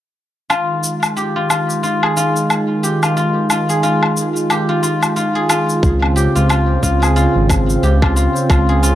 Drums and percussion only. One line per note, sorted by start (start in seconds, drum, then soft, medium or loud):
0.50 low woodblock medium
0.50 shaker soft
0.84 shaker medium
1.03 low woodblock medium
1.03 shaker soft
1.17 shaker soft
1.50 low woodblock medium
1.50 shaker medium
1.70 shaker soft
1.84 shaker soft
2.03 low woodblock medium
2.17 shaker medium
2.36 shaker soft
2.50 low woodblock medium
2.50 shaker soft
2.84 shaker medium
3.03 low woodblock medium
3.03 shaker soft
3.17 shaker soft
3.50 low woodblock medium
3.50 shaker medium
3.70 shaker soft
3.83 shaker soft
4.03 low woodblock medium
4.17 shaker medium
4.36 shaker soft
4.50 low woodblock medium
4.50 shaker soft
4.83 shaker medium
5.03 low woodblock medium
5.03 shaker soft
5.17 shaker soft
5.50 low woodblock medium
5.50 shaker medium
5.69 shaker soft
5.83 kick loud
5.83 shaker soft
6.02 low woodblock medium
6.17 shaker medium
6.36 shaker soft
6.50 low woodblock medium
6.50 shaker soft
6.83 kick medium
6.83 shaker medium
7.03 low woodblock medium
7.03 shaker soft
7.17 shaker soft
7.49 kick medium
7.49 low woodblock medium
7.49 shaker medium
7.70 shaker soft
7.83 shaker soft
8.02 kick loud
8.02 low woodblock medium
8.17 shaker medium
8.36 shaker soft
8.50 kick loud
8.50 low woodblock medium
8.50 shaker soft
8.83 shaker medium